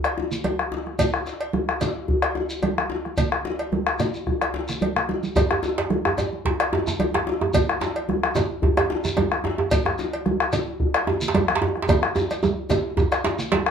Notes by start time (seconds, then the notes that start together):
0.04 bombo rim, cowbell, djembe slap
0.18 djembe slap, djembe tone
0.32 low conga, shekere
0.44 bombo rim, cowbell, high conga, djembe bass
0.59 bombo rim, high conga
0.72 djembe slap, djembe tone
0.86 bombo rim, high conga
0.99 bombo low, cowbell, high conga, low conga, djembe bass, shekere
1.14 bombo rim, djembe slap
1.26 djembe slap, shekere
1.41 cowbell
1.53 bombo rim, high conga, djembe bass
1.68 bombo rim, high conga
1.81 cowbell, djembe slap, djembe tone, low conga, shekere
1.96 high conga
2.08 bombo low, djembe bass
2.22 bombo rim, cowbell, djembe slap
2.35 djembe slap, djembe tone
2.50 shekere
2.62 bombo rim, cowbell, high conga, djembe bass
2.78 bombo rim, high conga
2.90 djembe slap, djembe tone
3.05 bombo rim, high conga
3.18 bombo low, cowbell, djembe slap, djembe bass, low conga, shekere
3.32 bombo rim, djembe slap
3.45 djembe slap, djembe tone
3.59 cowbell
3.72 high conga, djembe bass
3.87 bombo rim, high conga
3.99 bombo rim, cowbell, djembe slap, djembe tone, high conga, low conga, shekere
4.14 djembe slap, shekere
4.27 bombo rim, bombo low, djembe bass
4.41 bombo rim, cowbell, high conga
4.54 djembe slap, djembe tone
4.68 bombo rim, low conga, shekere
4.81 cowbell, high conga, djembe bass
4.96 bombo rim, low conga
5.09 djembe slap, high conga, djembe tone
5.23 high conga, shekere
5.36 bombo low, cowbell, high conga, djembe tone, djembe bass, low conga, shekere
5.50 bombo rim, djembe slap, djembe tone
5.63 djembe slap, djembe tone, shekere
5.78 cowbell, djembe slap
5.90 bombo rim, high conga, djembe bass
6.05 bombo rim, high conga, djembe tone
6.18 cowbell, djembe slap, djembe tone, shekere
6.33 high conga
6.45 bombo low, djembe slap, djembe bass
6.60 bombo rim, cowbell, djembe slap
6.73 djembe slap, djembe tone
6.87 djembe tone, low conga, shekere
6.99 bombo rim, cowbell, high conga, djembe bass
7.14 bombo rim, djembe slap, high conga
7.27 djembe slap, djembe tone
7.41 bombo rim, djembe tone, high conga
7.54 bombo low, cowbell, djembe tone, high conga, djembe bass, low conga, shekere
7.69 bombo rim, djembe slap
7.81 djembe slap, djembe tone, shekere
7.96 cowbell
8.09 bombo rim, high conga, djembe bass
8.23 bombo rim, high conga
8.35 cowbell, djembe slap, djembe tone, low conga, shekere
8.62 bombo low, djembe tone, djembe bass
8.77 bombo rim, cowbell, djembe slap, djembe tone
8.90 djembe slap, djembe tone
9.05 djembe tone, low conga, shekere
9.17 bombo rim, cowbell, djembe tone, high conga, djembe bass
9.32 bombo rim, high conga
9.44 djembe slap, djembe tone
9.58 bombo rim, djembe tone, high conga
9.71 bombo low, cowbell, high conga, djembe bass, low conga, shekere
9.85 bombo rim, djembe slap, djembe tone
9.99 djembe slap, djembe tone, shekere
10.13 cowbell
10.26 bombo rim, high conga, djembe bass
10.40 bombo rim
10.53 cowbell, djembe slap, djembe tone, low conga, shekere
10.67 high conga
10.80 bombo low, djembe bass
10.94 bombo rim, cowbell, djembe slap
11.07 djembe slap, djembe tone
11.21 low conga, shekere
11.28 djembe slap
11.34 bombo rim, cowbell, high conga, djembe tone, djembe bass
11.48 bombo rim, high conga
11.55 djembe slap
11.62 djembe slap, djembe tone
11.76 bombo rim, high conga
11.82 djembe slap
11.88 bombo low, cowbell, djembe tone, djembe bass, low conga, shekere
12.03 bombo rim, high conga
12.16 djembe slap, djembe tone, shekere
12.31 bombo rim, cowbell, high conga, shekere
12.43 djembe slap, djembe tone, high conga, djembe bass, shekere
12.57 djembe slap
12.70 cowbell, djembe slap, djembe tone, low conga, shekere
12.97 bombo low, djembe tone, djembe bass, shekere
13.12 bombo rim, cowbell, shekere
13.24 djembe slap, djembe tone, high conga, shekere
13.39 bombo rim, low conga, shekere
13.52 cowbell, djembe slap, high conga, djembe bass
13.66 bombo rim